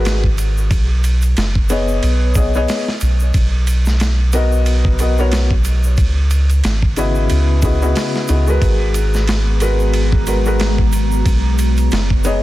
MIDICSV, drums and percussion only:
0, 0, Header, 1, 2, 480
1, 0, Start_track
1, 0, Tempo, 659341
1, 515, Time_signature, 4, 2, 24, 8
1, 9048, End_track
2, 0, Start_track
2, 0, Title_t, "Drums"
2, 38, Note_on_c, 9, 51, 84
2, 38, Note_on_c, 9, 82, 36
2, 47, Note_on_c, 9, 38, 109
2, 110, Note_off_c, 9, 51, 0
2, 111, Note_off_c, 9, 82, 0
2, 120, Note_off_c, 9, 38, 0
2, 172, Note_on_c, 9, 36, 92
2, 245, Note_off_c, 9, 36, 0
2, 277, Note_on_c, 9, 51, 57
2, 279, Note_on_c, 9, 82, 77
2, 350, Note_off_c, 9, 51, 0
2, 351, Note_off_c, 9, 82, 0
2, 419, Note_on_c, 9, 82, 50
2, 491, Note_off_c, 9, 82, 0
2, 515, Note_on_c, 9, 36, 102
2, 515, Note_on_c, 9, 82, 39
2, 516, Note_on_c, 9, 51, 82
2, 587, Note_off_c, 9, 36, 0
2, 588, Note_off_c, 9, 51, 0
2, 588, Note_off_c, 9, 82, 0
2, 756, Note_on_c, 9, 82, 70
2, 757, Note_on_c, 9, 51, 67
2, 829, Note_off_c, 9, 82, 0
2, 830, Note_off_c, 9, 51, 0
2, 886, Note_on_c, 9, 82, 57
2, 893, Note_on_c, 9, 51, 39
2, 959, Note_off_c, 9, 82, 0
2, 965, Note_off_c, 9, 51, 0
2, 995, Note_on_c, 9, 51, 79
2, 995, Note_on_c, 9, 82, 39
2, 1004, Note_on_c, 9, 38, 101
2, 1068, Note_off_c, 9, 51, 0
2, 1068, Note_off_c, 9, 82, 0
2, 1077, Note_off_c, 9, 38, 0
2, 1131, Note_on_c, 9, 36, 89
2, 1204, Note_off_c, 9, 36, 0
2, 1231, Note_on_c, 9, 82, 89
2, 1237, Note_on_c, 9, 51, 68
2, 1303, Note_off_c, 9, 82, 0
2, 1310, Note_off_c, 9, 51, 0
2, 1369, Note_on_c, 9, 82, 50
2, 1442, Note_off_c, 9, 82, 0
2, 1475, Note_on_c, 9, 51, 79
2, 1482, Note_on_c, 9, 82, 36
2, 1548, Note_off_c, 9, 51, 0
2, 1555, Note_off_c, 9, 82, 0
2, 1709, Note_on_c, 9, 82, 101
2, 1713, Note_on_c, 9, 36, 91
2, 1714, Note_on_c, 9, 51, 67
2, 1782, Note_off_c, 9, 82, 0
2, 1786, Note_off_c, 9, 36, 0
2, 1786, Note_off_c, 9, 51, 0
2, 1851, Note_on_c, 9, 82, 50
2, 1924, Note_off_c, 9, 82, 0
2, 1953, Note_on_c, 9, 82, 41
2, 1954, Note_on_c, 9, 46, 80
2, 1963, Note_on_c, 9, 38, 103
2, 2026, Note_off_c, 9, 82, 0
2, 2027, Note_off_c, 9, 46, 0
2, 2036, Note_off_c, 9, 38, 0
2, 2099, Note_on_c, 9, 38, 50
2, 2172, Note_off_c, 9, 38, 0
2, 2187, Note_on_c, 9, 82, 82
2, 2192, Note_on_c, 9, 51, 58
2, 2260, Note_off_c, 9, 82, 0
2, 2265, Note_off_c, 9, 51, 0
2, 2327, Note_on_c, 9, 82, 50
2, 2400, Note_off_c, 9, 82, 0
2, 2430, Note_on_c, 9, 82, 35
2, 2433, Note_on_c, 9, 36, 96
2, 2433, Note_on_c, 9, 51, 81
2, 2503, Note_off_c, 9, 82, 0
2, 2506, Note_off_c, 9, 36, 0
2, 2506, Note_off_c, 9, 51, 0
2, 2672, Note_on_c, 9, 51, 67
2, 2675, Note_on_c, 9, 82, 82
2, 2745, Note_off_c, 9, 51, 0
2, 2748, Note_off_c, 9, 82, 0
2, 2805, Note_on_c, 9, 82, 55
2, 2819, Note_on_c, 9, 38, 38
2, 2878, Note_off_c, 9, 82, 0
2, 2891, Note_off_c, 9, 38, 0
2, 2911, Note_on_c, 9, 51, 75
2, 2912, Note_on_c, 9, 82, 36
2, 2921, Note_on_c, 9, 38, 107
2, 2984, Note_off_c, 9, 51, 0
2, 2984, Note_off_c, 9, 82, 0
2, 2994, Note_off_c, 9, 38, 0
2, 3149, Note_on_c, 9, 82, 83
2, 3152, Note_on_c, 9, 51, 62
2, 3222, Note_off_c, 9, 82, 0
2, 3225, Note_off_c, 9, 51, 0
2, 3292, Note_on_c, 9, 82, 49
2, 3365, Note_off_c, 9, 82, 0
2, 3390, Note_on_c, 9, 82, 40
2, 3393, Note_on_c, 9, 51, 78
2, 3463, Note_off_c, 9, 82, 0
2, 3465, Note_off_c, 9, 51, 0
2, 3529, Note_on_c, 9, 36, 84
2, 3602, Note_off_c, 9, 36, 0
2, 3631, Note_on_c, 9, 51, 69
2, 3633, Note_on_c, 9, 82, 83
2, 3704, Note_off_c, 9, 51, 0
2, 3706, Note_off_c, 9, 82, 0
2, 3769, Note_on_c, 9, 82, 48
2, 3842, Note_off_c, 9, 82, 0
2, 3870, Note_on_c, 9, 51, 86
2, 3874, Note_on_c, 9, 82, 37
2, 3879, Note_on_c, 9, 38, 115
2, 3942, Note_off_c, 9, 51, 0
2, 3947, Note_off_c, 9, 82, 0
2, 3952, Note_off_c, 9, 38, 0
2, 4008, Note_on_c, 9, 36, 86
2, 4081, Note_off_c, 9, 36, 0
2, 4109, Note_on_c, 9, 82, 92
2, 4111, Note_on_c, 9, 51, 63
2, 4181, Note_off_c, 9, 82, 0
2, 4184, Note_off_c, 9, 51, 0
2, 4248, Note_on_c, 9, 82, 62
2, 4321, Note_off_c, 9, 82, 0
2, 4347, Note_on_c, 9, 82, 39
2, 4351, Note_on_c, 9, 51, 84
2, 4352, Note_on_c, 9, 36, 105
2, 4419, Note_off_c, 9, 82, 0
2, 4424, Note_off_c, 9, 36, 0
2, 4424, Note_off_c, 9, 51, 0
2, 4591, Note_on_c, 9, 51, 62
2, 4591, Note_on_c, 9, 82, 79
2, 4664, Note_off_c, 9, 51, 0
2, 4664, Note_off_c, 9, 82, 0
2, 4729, Note_on_c, 9, 51, 39
2, 4734, Note_on_c, 9, 82, 51
2, 4802, Note_off_c, 9, 51, 0
2, 4807, Note_off_c, 9, 82, 0
2, 4831, Note_on_c, 9, 51, 79
2, 4832, Note_on_c, 9, 82, 36
2, 4841, Note_on_c, 9, 38, 105
2, 4904, Note_off_c, 9, 51, 0
2, 4905, Note_off_c, 9, 82, 0
2, 4913, Note_off_c, 9, 38, 0
2, 4969, Note_on_c, 9, 36, 87
2, 5041, Note_off_c, 9, 36, 0
2, 5070, Note_on_c, 9, 51, 66
2, 5076, Note_on_c, 9, 82, 88
2, 5143, Note_off_c, 9, 51, 0
2, 5149, Note_off_c, 9, 82, 0
2, 5205, Note_on_c, 9, 82, 46
2, 5278, Note_off_c, 9, 82, 0
2, 5310, Note_on_c, 9, 82, 40
2, 5311, Note_on_c, 9, 51, 84
2, 5383, Note_off_c, 9, 82, 0
2, 5384, Note_off_c, 9, 51, 0
2, 5549, Note_on_c, 9, 51, 67
2, 5549, Note_on_c, 9, 82, 101
2, 5551, Note_on_c, 9, 36, 97
2, 5622, Note_off_c, 9, 51, 0
2, 5622, Note_off_c, 9, 82, 0
2, 5624, Note_off_c, 9, 36, 0
2, 5694, Note_on_c, 9, 82, 55
2, 5767, Note_off_c, 9, 82, 0
2, 5791, Note_on_c, 9, 46, 81
2, 5794, Note_on_c, 9, 82, 36
2, 5801, Note_on_c, 9, 38, 108
2, 5864, Note_off_c, 9, 46, 0
2, 5867, Note_off_c, 9, 82, 0
2, 5873, Note_off_c, 9, 38, 0
2, 5938, Note_on_c, 9, 38, 48
2, 6011, Note_off_c, 9, 38, 0
2, 6026, Note_on_c, 9, 82, 80
2, 6034, Note_on_c, 9, 51, 61
2, 6099, Note_off_c, 9, 82, 0
2, 6106, Note_off_c, 9, 51, 0
2, 6168, Note_on_c, 9, 82, 54
2, 6241, Note_off_c, 9, 82, 0
2, 6272, Note_on_c, 9, 36, 105
2, 6273, Note_on_c, 9, 51, 83
2, 6276, Note_on_c, 9, 82, 35
2, 6345, Note_off_c, 9, 36, 0
2, 6345, Note_off_c, 9, 51, 0
2, 6348, Note_off_c, 9, 82, 0
2, 6511, Note_on_c, 9, 51, 63
2, 6515, Note_on_c, 9, 82, 77
2, 6584, Note_off_c, 9, 51, 0
2, 6588, Note_off_c, 9, 82, 0
2, 6651, Note_on_c, 9, 82, 54
2, 6660, Note_on_c, 9, 38, 37
2, 6724, Note_off_c, 9, 82, 0
2, 6733, Note_off_c, 9, 38, 0
2, 6752, Note_on_c, 9, 51, 84
2, 6756, Note_on_c, 9, 82, 36
2, 6761, Note_on_c, 9, 38, 109
2, 6825, Note_off_c, 9, 51, 0
2, 6829, Note_off_c, 9, 82, 0
2, 6834, Note_off_c, 9, 38, 0
2, 6991, Note_on_c, 9, 51, 68
2, 6998, Note_on_c, 9, 82, 79
2, 7063, Note_off_c, 9, 51, 0
2, 7071, Note_off_c, 9, 82, 0
2, 7131, Note_on_c, 9, 82, 48
2, 7203, Note_off_c, 9, 82, 0
2, 7232, Note_on_c, 9, 82, 38
2, 7233, Note_on_c, 9, 51, 77
2, 7305, Note_off_c, 9, 82, 0
2, 7306, Note_off_c, 9, 51, 0
2, 7370, Note_on_c, 9, 36, 88
2, 7443, Note_off_c, 9, 36, 0
2, 7475, Note_on_c, 9, 51, 68
2, 7475, Note_on_c, 9, 82, 88
2, 7548, Note_off_c, 9, 51, 0
2, 7548, Note_off_c, 9, 82, 0
2, 7611, Note_on_c, 9, 82, 57
2, 7683, Note_off_c, 9, 82, 0
2, 7711, Note_on_c, 9, 82, 34
2, 7714, Note_on_c, 9, 51, 85
2, 7724, Note_on_c, 9, 38, 115
2, 7784, Note_off_c, 9, 82, 0
2, 7787, Note_off_c, 9, 51, 0
2, 7797, Note_off_c, 9, 38, 0
2, 7851, Note_on_c, 9, 36, 91
2, 7924, Note_off_c, 9, 36, 0
2, 7953, Note_on_c, 9, 82, 90
2, 7954, Note_on_c, 9, 51, 64
2, 8026, Note_off_c, 9, 82, 0
2, 8027, Note_off_c, 9, 51, 0
2, 8093, Note_on_c, 9, 82, 55
2, 8166, Note_off_c, 9, 82, 0
2, 8194, Note_on_c, 9, 36, 95
2, 8194, Note_on_c, 9, 51, 83
2, 8196, Note_on_c, 9, 82, 37
2, 8267, Note_off_c, 9, 36, 0
2, 8267, Note_off_c, 9, 51, 0
2, 8269, Note_off_c, 9, 82, 0
2, 8433, Note_on_c, 9, 82, 77
2, 8435, Note_on_c, 9, 51, 67
2, 8506, Note_off_c, 9, 82, 0
2, 8508, Note_off_c, 9, 51, 0
2, 8570, Note_on_c, 9, 82, 48
2, 8574, Note_on_c, 9, 51, 41
2, 8643, Note_off_c, 9, 82, 0
2, 8647, Note_off_c, 9, 51, 0
2, 8670, Note_on_c, 9, 82, 38
2, 8676, Note_on_c, 9, 51, 82
2, 8686, Note_on_c, 9, 38, 107
2, 8743, Note_off_c, 9, 82, 0
2, 8749, Note_off_c, 9, 51, 0
2, 8758, Note_off_c, 9, 38, 0
2, 8811, Note_on_c, 9, 36, 92
2, 8884, Note_off_c, 9, 36, 0
2, 8910, Note_on_c, 9, 82, 82
2, 8916, Note_on_c, 9, 51, 61
2, 8983, Note_off_c, 9, 82, 0
2, 8989, Note_off_c, 9, 51, 0
2, 9048, End_track
0, 0, End_of_file